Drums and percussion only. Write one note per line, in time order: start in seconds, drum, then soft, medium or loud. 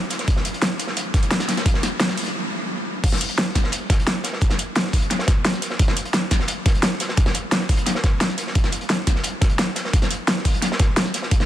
0.10 snare soft
0.10 closed hi-hat medium
0.19 snare soft
0.19 closed hi-hat soft
0.28 kick loud
0.28 closed hi-hat medium
0.36 snare medium
0.45 closed hi-hat medium
0.54 closed hi-hat soft
0.62 snare loud
0.62 closed hi-hat medium
0.79 closed hi-hat medium
0.87 snare soft
0.97 closed hi-hat medium
1.14 kick loud
1.14 snare soft
1.14 closed hi-hat medium
1.22 closed hi-hat soft
1.31 snare loud
1.31 closed hi-hat medium
1.40 snare medium
1.48 snare medium
1.48 snare soft
1.48 closed hi-hat medium
1.57 snare soft
1.57 closed hi-hat soft
1.66 kick loud
1.66 closed hi-hat loud
1.66 closed hi-hat medium
1.74 snare medium
1.83 snare medium
1.83 closed hi-hat medium
2.00 snare loud
2.00 closed hi-hat medium
2.09 snare medium
2.09 snare soft
2.17 open hi-hat medium
2.26 closed hi-hat soft
3.04 kick loud
3.04 closed hi-hat medium
3.04 closed hi-hat loud
3.04 crash loud
3.12 snare soft
3.21 closed hi-hat medium
3.21 closed hi-hat loud
3.29 closed hi-hat soft
3.38 snare loud
3.38 closed hi-hat medium
3.55 kick medium
3.55 snare medium
3.55 closed hi-hat loud
3.55 closed hi-hat medium
3.64 snare soft
3.72 closed hi-hat medium
3.90 kick loud
3.90 snare soft
3.90 closed hi-hat loud
3.90 closed hi-hat medium
4.00 closed hi-hat soft
4.07 snare loud
4.07 closed hi-hat medium
4.24 snare medium
4.24 closed hi-hat medium
4.24 closed hi-hat loud
4.33 snare soft
4.41 kick loud
4.41 closed hi-hat medium
4.50 snare soft
4.59 closed hi-hat medium
4.59 closed hi-hat loud
4.75 snare loud
4.75 closed hi-hat medium
4.84 snare medium
4.93 kick medium
4.93 open hi-hat medium
5.03 closed hi-hat soft
5.10 snare soft
5.10 closed hi-hat medium
5.19 snare medium
5.27 kick loud
5.27 snare medium
5.27 closed hi-hat loud
5.27 closed hi-hat medium
5.45 snare loud
5.45 closed hi-hat medium
5.54 snare soft
5.62 snare soft
5.62 closed hi-hat medium
5.70 snare soft
5.79 kick loud
5.79 closed hi-hat medium
5.88 snare medium
5.88 snare soft
5.97 closed hi-hat medium
6.05 closed hi-hat soft
6.13 snare loud
6.13 closed hi-hat medium
6.31 kick medium
6.31 snare medium
6.31 closed hi-hat medium
6.40 snare soft
6.48 closed hi-hat medium
6.66 kick loud
6.66 snare soft
6.66 closed hi-hat medium
6.75 closed hi-hat soft
6.83 snare loud
6.83 closed hi-hat medium
7.00 snare medium
7.00 closed hi-hat loud
7.00 closed hi-hat medium
7.09 snare soft
7.17 kick loud
7.17 closed hi-hat medium
7.26 snare medium
7.26 snare soft
7.34 closed hi-hat medium
7.52 snare loud
7.52 closed hi-hat medium
7.60 snare medium
7.69 kick medium
7.69 open hi-hat medium
7.77 closed hi-hat soft
7.86 snare soft
7.86 closed hi-hat medium
7.95 snare soft
8.04 kick loud
8.04 snare medium
8.04 closed hi-hat medium
8.21 snare loud
8.21 closed hi-hat medium
8.29 snare soft
8.37 snare soft
8.37 closed hi-hat medium
8.47 snare soft
8.55 kick loud
8.55 closed hi-hat medium
8.64 snare soft
8.72 closed hi-hat medium
8.81 closed hi-hat soft
8.89 snare loud
8.89 closed hi-hat medium
9.07 kick medium
9.07 snare medium
9.07 closed hi-hat medium
9.16 snare soft
9.24 closed hi-hat medium
9.41 kick loud
9.41 snare soft
9.41 closed hi-hat medium
9.50 closed hi-hat soft
9.59 snare loud
9.59 closed hi-hat medium
9.76 snare medium
9.76 closed hi-hat medium
9.85 snare soft
9.93 kick loud
9.93 closed hi-hat medium
10.02 snare medium
10.02 snare soft
10.11 closed hi-hat loud
10.11 closed hi-hat medium
10.28 snare loud
10.28 closed hi-hat medium
10.37 snare medium
10.45 kick medium
10.45 open hi-hat medium
10.55 closed hi-hat soft
10.62 snare soft
10.62 closed hi-hat medium
10.72 snare medium
10.79 kick loud
10.79 snare medium
10.79 closed hi-hat medium
10.96 snare loud
10.96 closed hi-hat medium
11.06 snare soft
11.14 snare soft
11.14 closed hi-hat loud
11.14 closed hi-hat medium
11.22 snare soft
11.31 kick loud
11.31 closed hi-hat medium
11.31 closed hi-hat loud
11.40 snare soft